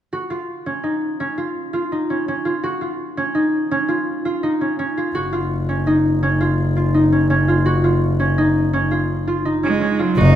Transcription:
0, 0, Header, 1, 4, 480
1, 0, Start_track
1, 0, Tempo, 358852
1, 167, Time_signature, 7, 2, 24, 8
1, 13851, End_track
2, 0, Start_track
2, 0, Title_t, "Harp"
2, 0, Program_c, 0, 46
2, 169, Note_on_c, 0, 66, 54
2, 403, Note_on_c, 0, 65, 47
2, 483, Note_off_c, 0, 66, 0
2, 886, Note_on_c, 0, 61, 50
2, 1117, Note_on_c, 0, 63, 48
2, 1600, Note_off_c, 0, 61, 0
2, 1606, Note_on_c, 0, 61, 52
2, 1836, Note_off_c, 0, 65, 0
2, 1841, Note_on_c, 0, 65, 43
2, 2312, Note_off_c, 0, 65, 0
2, 2317, Note_on_c, 0, 65, 49
2, 2562, Note_off_c, 0, 63, 0
2, 2568, Note_on_c, 0, 63, 42
2, 2804, Note_off_c, 0, 61, 0
2, 2809, Note_on_c, 0, 61, 42
2, 3047, Note_off_c, 0, 61, 0
2, 3052, Note_on_c, 0, 61, 50
2, 3274, Note_off_c, 0, 65, 0
2, 3279, Note_on_c, 0, 65, 47
2, 3524, Note_on_c, 0, 66, 54
2, 3604, Note_off_c, 0, 65, 0
2, 3760, Note_on_c, 0, 65, 42
2, 3840, Note_off_c, 0, 66, 0
2, 4239, Note_off_c, 0, 61, 0
2, 4245, Note_on_c, 0, 61, 51
2, 4471, Note_off_c, 0, 63, 0
2, 4477, Note_on_c, 0, 63, 48
2, 4962, Note_off_c, 0, 61, 0
2, 4967, Note_on_c, 0, 61, 58
2, 5191, Note_off_c, 0, 65, 0
2, 5196, Note_on_c, 0, 65, 48
2, 5682, Note_off_c, 0, 65, 0
2, 5687, Note_on_c, 0, 65, 51
2, 5922, Note_off_c, 0, 63, 0
2, 5927, Note_on_c, 0, 63, 52
2, 6161, Note_off_c, 0, 61, 0
2, 6166, Note_on_c, 0, 61, 43
2, 6401, Note_off_c, 0, 61, 0
2, 6407, Note_on_c, 0, 61, 54
2, 6649, Note_off_c, 0, 65, 0
2, 6655, Note_on_c, 0, 65, 46
2, 6885, Note_on_c, 0, 66, 59
2, 6965, Note_off_c, 0, 65, 0
2, 7123, Note_on_c, 0, 65, 46
2, 7204, Note_off_c, 0, 66, 0
2, 7603, Note_off_c, 0, 61, 0
2, 7609, Note_on_c, 0, 61, 50
2, 7844, Note_off_c, 0, 63, 0
2, 7849, Note_on_c, 0, 63, 54
2, 8323, Note_off_c, 0, 61, 0
2, 8329, Note_on_c, 0, 61, 53
2, 8562, Note_off_c, 0, 65, 0
2, 8568, Note_on_c, 0, 65, 50
2, 9044, Note_off_c, 0, 65, 0
2, 9049, Note_on_c, 0, 65, 46
2, 9283, Note_off_c, 0, 63, 0
2, 9288, Note_on_c, 0, 63, 50
2, 9523, Note_off_c, 0, 61, 0
2, 9529, Note_on_c, 0, 61, 44
2, 9760, Note_off_c, 0, 61, 0
2, 9765, Note_on_c, 0, 61, 51
2, 10001, Note_off_c, 0, 65, 0
2, 10006, Note_on_c, 0, 65, 49
2, 10241, Note_on_c, 0, 66, 59
2, 10321, Note_off_c, 0, 65, 0
2, 10485, Note_on_c, 0, 65, 51
2, 10565, Note_off_c, 0, 66, 0
2, 10958, Note_off_c, 0, 61, 0
2, 10963, Note_on_c, 0, 61, 51
2, 11202, Note_off_c, 0, 63, 0
2, 11207, Note_on_c, 0, 63, 58
2, 11677, Note_off_c, 0, 61, 0
2, 11682, Note_on_c, 0, 61, 57
2, 11917, Note_off_c, 0, 65, 0
2, 11922, Note_on_c, 0, 65, 45
2, 12400, Note_off_c, 0, 65, 0
2, 12406, Note_on_c, 0, 65, 51
2, 12639, Note_off_c, 0, 63, 0
2, 12644, Note_on_c, 0, 63, 51
2, 12879, Note_off_c, 0, 61, 0
2, 12884, Note_on_c, 0, 61, 50
2, 13122, Note_off_c, 0, 61, 0
2, 13127, Note_on_c, 0, 61, 52
2, 13360, Note_off_c, 0, 65, 0
2, 13365, Note_on_c, 0, 65, 53
2, 13604, Note_on_c, 0, 66, 64
2, 13685, Note_off_c, 0, 65, 0
2, 13851, Note_off_c, 0, 61, 0
2, 13851, Note_off_c, 0, 63, 0
2, 13851, Note_off_c, 0, 66, 0
2, 13851, End_track
3, 0, Start_track
3, 0, Title_t, "Cello"
3, 0, Program_c, 1, 42
3, 12898, Note_on_c, 1, 56, 65
3, 13389, Note_on_c, 1, 54, 65
3, 13409, Note_off_c, 1, 56, 0
3, 13607, Note_on_c, 1, 63, 78
3, 13627, Note_off_c, 1, 54, 0
3, 13851, Note_off_c, 1, 63, 0
3, 13851, End_track
4, 0, Start_track
4, 0, Title_t, "Double bass"
4, 0, Program_c, 2, 43
4, 6893, Note_on_c, 2, 30, 51
4, 13075, Note_off_c, 2, 30, 0
4, 13604, Note_on_c, 2, 30, 78
4, 13851, Note_off_c, 2, 30, 0
4, 13851, End_track
0, 0, End_of_file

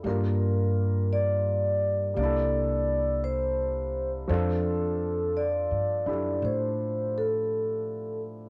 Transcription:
0, 0, Header, 1, 4, 480
1, 0, Start_track
1, 0, Tempo, 1063830
1, 23, Time_signature, 4, 2, 24, 8
1, 3831, End_track
2, 0, Start_track
2, 0, Title_t, "Vibraphone"
2, 0, Program_c, 0, 11
2, 30, Note_on_c, 0, 70, 61
2, 508, Note_on_c, 0, 74, 77
2, 521, Note_off_c, 0, 70, 0
2, 974, Note_off_c, 0, 74, 0
2, 980, Note_on_c, 0, 74, 83
2, 1442, Note_off_c, 0, 74, 0
2, 1462, Note_on_c, 0, 72, 75
2, 1848, Note_off_c, 0, 72, 0
2, 1939, Note_on_c, 0, 69, 64
2, 2422, Note_on_c, 0, 74, 68
2, 2434, Note_off_c, 0, 69, 0
2, 2909, Note_on_c, 0, 72, 63
2, 2916, Note_off_c, 0, 74, 0
2, 3238, Note_on_c, 0, 69, 63
2, 3244, Note_off_c, 0, 72, 0
2, 3696, Note_off_c, 0, 69, 0
2, 3831, End_track
3, 0, Start_track
3, 0, Title_t, "Grand piano"
3, 0, Program_c, 1, 0
3, 0, Control_c, 1, 64, 127
3, 14, Note_on_c, 1, 55, 42
3, 21, Note_on_c, 1, 58, 40
3, 26, Note_on_c, 1, 62, 35
3, 28, Control_c, 1, 64, 0
3, 32, Note_on_c, 1, 65, 36
3, 39, Note_on_c, 1, 70, 42
3, 97, Control_c, 1, 64, 127
3, 958, Note_off_c, 1, 55, 0
3, 965, Note_on_c, 1, 55, 47
3, 970, Note_off_c, 1, 58, 0
3, 977, Note_on_c, 1, 58, 44
3, 982, Note_off_c, 1, 62, 0
3, 987, Note_off_c, 1, 65, 0
3, 989, Control_c, 1, 64, 0
3, 989, Note_on_c, 1, 62, 44
3, 991, Note_off_c, 1, 70, 0
3, 1003, Note_on_c, 1, 64, 40
3, 1015, Note_on_c, 1, 69, 53
3, 1055, Control_c, 1, 64, 127
3, 1930, Note_on_c, 1, 53, 47
3, 1932, Note_off_c, 1, 55, 0
3, 1935, Note_off_c, 1, 62, 0
3, 1936, Note_on_c, 1, 60, 47
3, 1938, Note_off_c, 1, 58, 0
3, 1942, Note_on_c, 1, 62, 50
3, 1946, Note_off_c, 1, 69, 0
3, 1947, Control_c, 1, 64, 0
3, 1950, Note_on_c, 1, 65, 46
3, 1951, Note_off_c, 1, 64, 0
3, 1953, Note_on_c, 1, 69, 57
3, 2021, Control_c, 1, 64, 127
3, 2727, Note_off_c, 1, 62, 0
3, 2734, Note_on_c, 1, 62, 38
3, 2737, Note_on_c, 1, 64, 31
3, 2742, Note_off_c, 1, 69, 0
3, 2744, Note_on_c, 1, 67, 35
3, 2749, Note_on_c, 1, 69, 39
3, 3831, Note_off_c, 1, 53, 0
3, 3831, Note_off_c, 1, 60, 0
3, 3831, Note_off_c, 1, 62, 0
3, 3831, Note_off_c, 1, 64, 0
3, 3831, Note_off_c, 1, 65, 0
3, 3831, Note_off_c, 1, 67, 0
3, 3831, Note_off_c, 1, 69, 0
3, 3831, End_track
4, 0, Start_track
4, 0, Title_t, "Upright bass"
4, 0, Program_c, 2, 32
4, 18, Note_on_c, 2, 43, 70
4, 962, Note_off_c, 2, 43, 0
4, 976, Note_on_c, 2, 36, 67
4, 1919, Note_off_c, 2, 36, 0
4, 1937, Note_on_c, 2, 41, 71
4, 2561, Note_off_c, 2, 41, 0
4, 2576, Note_on_c, 2, 43, 52
4, 2727, Note_off_c, 2, 43, 0
4, 2735, Note_on_c, 2, 42, 52
4, 2887, Note_off_c, 2, 42, 0
4, 2897, Note_on_c, 2, 45, 68
4, 3831, Note_off_c, 2, 45, 0
4, 3831, End_track
0, 0, End_of_file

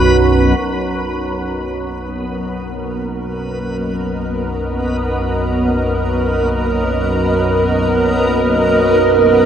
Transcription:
0, 0, Header, 1, 4, 480
1, 0, Start_track
1, 0, Key_signature, 5, "major"
1, 0, Tempo, 500000
1, 9077, End_track
2, 0, Start_track
2, 0, Title_t, "Ambient pad"
2, 0, Program_c, 0, 92
2, 548, Note_on_c, 0, 70, 84
2, 1834, Note_on_c, 0, 71, 64
2, 2821, Note_on_c, 0, 75, 77
2, 9077, Note_off_c, 0, 70, 0
2, 9077, Note_off_c, 0, 71, 0
2, 9077, Note_off_c, 0, 75, 0
2, 9077, End_track
3, 0, Start_track
3, 0, Title_t, "Synth texture"
3, 0, Program_c, 1, 99
3, 0, Note_on_c, 1, 71, 71
3, 565, Note_on_c, 1, 59, 80
3, 579, Note_off_c, 1, 71, 0
3, 9077, Note_off_c, 1, 59, 0
3, 9077, End_track
4, 0, Start_track
4, 0, Title_t, "Synth drone"
4, 0, Program_c, 2, 95
4, 0, Note_on_c, 2, 35, 70
4, 0, Note_on_c, 2, 42, 64
4, 551, Note_off_c, 2, 35, 0
4, 551, Note_off_c, 2, 42, 0
4, 562, Note_on_c, 2, 35, 70
4, 562, Note_on_c, 2, 42, 74
4, 9077, Note_off_c, 2, 35, 0
4, 9077, Note_off_c, 2, 42, 0
4, 9077, End_track
0, 0, End_of_file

